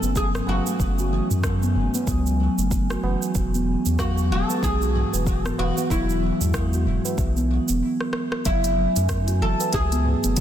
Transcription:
Already playing: ambient pad F#3 A3 C#4 G#5, oud A4
0.02 analog synth bass F#1, steel tongue drum B3, tabla tin, shaker
0.16 steel tongue drum F#3, oud G#4, kick, shaker
0.34 cross-stick, tabla ge, shaker
0.47 analog synth bass F#1, steel tongue drum F#3, oud F#4, tabla na
0.66 steel tongue drum A3, tabla tin, shaker
0.79 analog synth bass F#1, kick, shaker
0.99 steel tongue drum F#4, tabla na, shaker
1.12 steel tongue drum E3
1.30 analog synth bass F#2, tabla ge, shaker
1.44 kick, cross-stick, shaker
1.63 steel tongue drum B3, shaker
1.75 analog synth bass F#1, tabla ge
1.95 steel tongue drum B3, tabla tin, shaker
2.07 analog synth bass C#2, steel tongue drum F#3, kick, shaker
2.26 shaker
2.40 steel tongue drum F#3
2.58 analog synth bass F#1, steel tongue drum A3, shaker
2.71 kick, shaker
2.90 steel tongue drum F#4, cross-stick, shaker
3.03 analog synth bass F#1, steel tongue drum E3, tabla na
3.22 shaker
3.35 analog synth bass E1, ambient pad E3 B3 F#4, kick, shaker
3.54 steel tongue drum B3, shaker
3.86 analog synth bass E2, steel tongue drum B3, shaker
3.99 steel tongue drum F#3, oud F#4, kick, cross-stick, shaker
4.18 shaker
4.31 analog synth bass E1, steel tongue drum F#3, oud A4
4.50 steel tongue drum G#3, tabla tin, shaker
4.63 analog synth bass B1, oud G#4, kick, shaker
4.82 steel tongue drum F#4, shaker
4.95 steel tongue drum E3, tabla ge
5.13 analog synth bass E1, tabla tin, shaker
5.27 kick, shaker
5.46 steel tongue drum B3, cross-stick, tabla ge, shaker
5.58 analog synth bass E1, oud F#4, tabla na
5.78 steel tongue drum B3, tabla tin, shaker
5.90 analog synth bass E1, steel tongue drum F#3, oud E4, kick, shaker
6.08 tabla na, tabla tin, shaker
6.22 steel tongue drum F#3
6.41 analog synth bass E2, steel tongue drum G#3, tabla ge, shaker
6.54 kick, cross-stick, shaker
6.73 steel tongue drum F#4, shaker
6.86 analog synth bass E1, steel tongue drum E3, tabla ge
7.05 tabla tin, shaker
7.18 analog synth bass B1, kick, shaker
7.37 steel tongue drum B3, shaker
7.68 analog synth bass E1, steel tongue drum B3, shaker
8.01 cross-stick
8.13 cross-stick
8.32 cross-stick
8.45 analog synth bass F#1, ambient pad F#3 A3 C#4 G#5, steel tongue drum F#3, oud E4, kick, closed hi-hat, shaker
8.64 closed hi-hat, tabla tin, shaker
8.78 steel tongue drum F#3
8.96 analog synth bass F#2, steel tongue drum A3, closed hi-hat, shaker
9.09 kick, cross-stick, closed hi-hat, shaker
9.28 steel tongue drum F#4, closed hi-hat, shaker
9.41 analog synth bass F#1, steel tongue drum E3, oud A4
9.60 closed hi-hat, tabla tin, shaker
9.73 analog synth bass C#2, oud G#4, kick, closed hi-hat, shaker
9.92 steel tongue drum B3, closed hi-hat, shaker
10.05 tabla tin, tabla ge
10.24 analog synth bass F#1, steel tongue drum B3, closed hi-hat, tabla tin, shaker
10.37 steel tongue drum F#3, kick, closed hi-hat, shaker

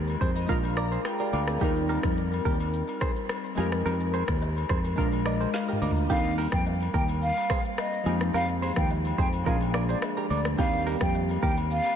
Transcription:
Already playing: fingered electric bass D#2, synth keys G#3 D#4 G4 A#4
0.07 high agogo, shaker
0.21 fingered electric bass F2, clean electric guitar G#4 C5, synth keys C5, kick, shaker
0.36 synth keys D#5, high agogo, shaker
0.47 fingered electric bass A#1, synth keys G#3 D4 F4 F5, clean electric guitar F4 A#4, kick, shaker
0.52 synth keys A#4
0.63 high agogo, shaker
0.77 clean electric guitar A#4 D5, synth keys A#5, cross-stick, shaker
0.92 clean electric guitar G#4 C5, shaker
1.05 synth keys G#4 F5 G5, cross-stick, high agogo, shaker
1.20 synth keys F4 D5, clean electric guitar G4 A#4, shaker
1.33 fingered electric bass D2, synth keys D4 A#4 F5, clean electric guitar A#4 D5, high agogo, shaker
1.48 synth keys C4 G#4, cross-stick, shaker
1.59 fingered electric bass D#2, synth keys G3 C4 D#4, clean electric guitar D#4 G4, kick, high agogo, shaker
1.64 synth keys A#4
1.76 shaker
1.89 clean electric guitar G4 A#4, high agogo, shaker
2.03 fingered electric bass F2, kick, cross-stick, shaker
2.17 shaker
2.32 high agogo, shaker
2.45 fingered electric bass D#2, clean electric guitar G4 A#4, kick, shaker
2.60 high agogo, shaker
2.73 shaker
2.88 high agogo, shaker
3.01 clean electric guitar G#4 C5, kick, cross-stick, shaker
3.16 shaker
3.29 cross-stick, high agogo, shaker
3.44 shaker
3.55 fingered electric bass F2, synth keys G#3 D#4 G4, clean electric guitar F4 G#4, high agogo, shaker
3.60 synth keys A#4
3.72 cross-stick, shaker
3.86 fingered electric bass F2, clean electric guitar G4 A#4, high agogo, shaker
4.00 shaker
4.13 clean electric guitar G#4 C5, high agogo, shaker
4.28 fingered electric bass D#2, kick, cross-stick, shaker
4.42 low woodblock, shaker
4.56 high agogo, shaker
4.69 fingered electric bass F2, clean electric guitar G#4 C5, kick, cross-stick, shaker
4.84 high agogo, shaker
4.96 fingered electric bass A#1, synth keys G#3 D4 F4, clean electric guitar F4 A#4, kick, shaker
5.00 synth keys A#4
5.12 high agogo, shaker
5.26 clean electric guitar A#4 D5, synth keys D#5, cross-stick, shaker
5.41 clean electric guitar G#4 C5, shaker
5.53 synth keys F5, snare, high agogo, low woodblock, shaker
5.68 clean electric guitar G4 A#4, shaker
5.73 mid tom
5.82 fingered electric bass D2, clean electric guitar A#4 D5, synth keys A#5, high agogo, shaker
5.91 floor tom
5.97 shaker
6.07 fingered electric bass D#2, synth keys G3 A#3 C4 D#4, clean electric guitar D#4 G4, flute F5, kick, shaker
6.11 synth keys A4, high agogo
6.19 synth keys A#4
6.25 shaker
6.38 clean electric guitar G4 A#4, open hi-hat, high agogo, shaker
6.52 fingered electric bass F2, flute G5, kick, cross-stick, shaker
6.66 low woodblock, shaker
6.80 high agogo, shaker
6.94 fingered electric bass D#2, clean electric guitar G4 A#4, flute G5, kick, shaker
7.08 high agogo, shaker
7.22 flute F5, shaker
7.36 high agogo, shaker
7.50 clean electric guitar G#4 C5, kick, cross-stick, shaker
7.65 shaker
7.78 flute D#5, cross-stick, high agogo, low woodblock, shaker
7.93 shaker
8.04 fingered electric bass F2, synth keys F3 G#3 A#3 D#4, clean electric guitar F4 G#4, high agogo, shaker
8.09 synth keys G4
8.21 cross-stick, shaker
8.34 fingered electric bass F2, clean electric guitar G4 A#4, flute F5, high agogo, shaker
8.49 shaker
8.62 clean electric guitar G#4 C5, open hi-hat, high agogo, shaker
8.76 fingered electric bass D#2, flute G5, kick, cross-stick, shaker
8.90 low woodblock, shaker
9.05 high agogo, shaker
9.18 fingered electric bass F2, clean electric guitar G#4 C5, flute G5, kick, shaker
9.33 high agogo, shaker
9.44 fingered electric bass A#1, synth keys F3 G#3 A#3 C#4, clean electric guitar F4 A#4, flute F5, kick, shaker
9.49 synth keys G#4
9.54 synth keys D4
9.60 high agogo, shaker
9.74 clean electric guitar A#4 D5, cross-stick, shaker
9.89 clean electric guitar G#4 C5, flute D5, shaker
10.02 cross-stick, high agogo, low woodblock, shaker
10.17 clean electric guitar G4 A#4, shaker
10.30 fingered electric bass D2, clean electric guitar A#4 D5, flute D5, high agogo, shaker
10.45 cross-stick, shaker
10.56 fingered electric bass D#2, synth keys D#3 G3 A#3 C4, clean electric guitar D#4 G4, flute F5, kick, high agogo, shaker
10.61 synth keys G4
10.73 shaker
10.86 clean electric guitar G4 A#4, open hi-hat, high agogo, shaker
11.01 fingered electric bass F2, flute G5, kick, cross-stick, shaker
11.15 low woodblock, shaker
11.29 high agogo, shaker
11.43 fingered electric bass D#2, clean electric guitar G4 A#4, flute G5, kick, shaker
11.57 high agogo, shaker
11.71 flute F5, shaker
11.85 high agogo, shaker

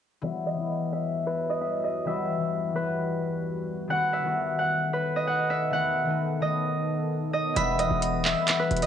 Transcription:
0.22 harp E3 G3 B3 E5, ambient pad E3 G3 F#4
0.26 harp F#4
0.46 harp D#5
0.55 harp E3 G3 B3
0.60 harp E4
0.92 harp E5
1.27 harp B4
1.50 harp D#5
1.61 harp E5
1.84 harp D#5
2.05 harp E3 G3 B3 E5
2.09 harp F#4
2.39 harp E3 G3 B3
2.44 harp F#4
2.73 harp E3 G3 B3 B4
2.77 harp F#4
3.88 harp D#3 A3 B3 F#5, ambient pad D#3 B3 A4
3.92 harp F#4
4.13 harp E5
4.22 harp D#3 A3 B3
4.27 harp F#4
4.59 harp F#5
4.93 harp B4
5.16 harp D#5
5.27 harp F#5
5.50 harp E5
5.70 harp D#3 A3 B3 F#5
5.75 harp F#4
6.05 harp D#3 A3 B3
6.10 harp D#4
6.40 harp D#3 A3 B3 D#5
6.45 harp A4
7.33 harp D#5
7.54 808-style bass E1, harp E3 G3 B3 F#4 E5, ambient pad G3 F#4 E5, synth bell B5, closed hi-hat
7.58 harp B4
7.79 harp D#5, closed hi-hat
7.88 808-style bass E1, harp E3 G3 B3 F#4
7.93 harp B4
8.02 synth bell D#6, closed hi-hat
8.25 harp E5, synth bell E6, clap
8.34 harp E3 G3 B3 F#4
8.39 harp B4
8.48 clap, closed hi-hat
8.59 harp B4
8.71 808-style bass E1, closed hi-hat
8.77 closed hi-hat
8.82 harp D#5, closed hi-hat

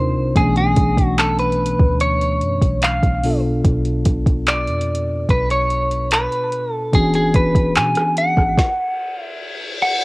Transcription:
Already playing: 808-style bass D#2, tine electric piano C3 C4 D4 D#4 F4 A#4, clean electric guitar C5
0.15 808-style bass C2
0.35 808-style bass B1, tine electric piano B2 E3 A3 B3 C#4 D4, clean electric guitar G#4, kick, closed hi-hat
0.56 clean electric guitar G#4, closed hi-hat
0.76 808-style bass B1, kick, closed hi-hat
0.97 kick, closed hi-hat
1.06 clean electric guitar F#4
1.18 clean electric guitar A4, clap, closed hi-hat
1.39 clean electric guitar B4, closed hi-hat
1.52 closed hi-hat
1.66 closed hi-hat
1.80 808-style bass D2, kick
2.00 clean electric guitar C#5, closed hi-hat
2.22 closed hi-hat
2.41 808-style bass F#2, closed hi-hat
2.62 808-style bass B1, kick, closed hi-hat
2.82 clean electric guitar F5, clap, closed hi-hat
3.03 808-style bass B1, kick, closed hi-hat
3.23 tine electric piano B2 B3 D4 F4 A4, open hi-hat
3.65 808-style bass B1, kick, closed hi-hat
3.85 closed hi-hat
4.05 808-style bass B1, kick, closed hi-hat
4.26 kick, closed hi-hat
4.47 clean electric guitar D5, clap, closed hi-hat
4.67 808-style bass F2, closed hi-hat
4.81 closed hi-hat
4.95 closed hi-hat
5.29 808-style bass B1, clean electric guitar B4, kick, closed hi-hat
5.50 clean electric guitar C#5, closed hi-hat
5.70 closed hi-hat
5.91 closed hi-hat
6.11 clean electric guitar B4, clap, closed hi-hat
6.32 closed hi-hat
6.52 closed hi-hat
6.74 clean electric guitar A4
6.92 808-style bass E1, tine electric piano E3 B3 C#4 D4 F#4 G#4, clean electric guitar G#4, kick, closed hi-hat
7.14 clean electric guitar G#4, closed hi-hat
7.34 808-style bass E1, clean electric guitar B4, kick, closed hi-hat
7.55 kick, closed hi-hat
7.75 808-style bass B2, clean electric guitar G#5, clap, closed hi-hat
7.95 cross-stick, closed hi-hat
8.17 clean electric guitar F#5, closed hi-hat
8.37 808-style bass G#1, kick, cross-stick
8.58 kick, snare, reverse cymbal
9.24 clean electric guitar E5
9.83 clean electric guitar F#5

